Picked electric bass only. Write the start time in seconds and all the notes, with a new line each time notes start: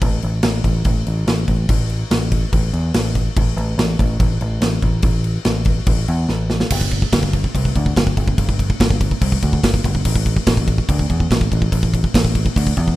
0.02 A1
0.23 A1
0.43 A1
0.64 A1
0.86 A1
1.07 A1
1.27 A1
1.48 A1
1.69 A1
2.11 A1
2.52 A1
2.73 E2
2.94 A1
3.37 A1
3.57 A1
3.78 A1
3.99 A1
4.20 A1
4.41 A1
4.61 A1
4.82 A1
5.03 A1
5.46 A1
5.87 A1
6.08 E2
6.29 A1
6.71 G1
7.13 G1
7.55 C2
7.76 D2
7.97 G1
8.17 G1
8.38 G1
8.80 G1
9.21 C2
9.43 D2
9.63 G1
9.85 G1
10.05 A1
10.47 A1
10.89 D2
11.10 E2
11.31 A1
11.52 A1
11.72 A1
12.14 A1
12.56 D2
12.77 E2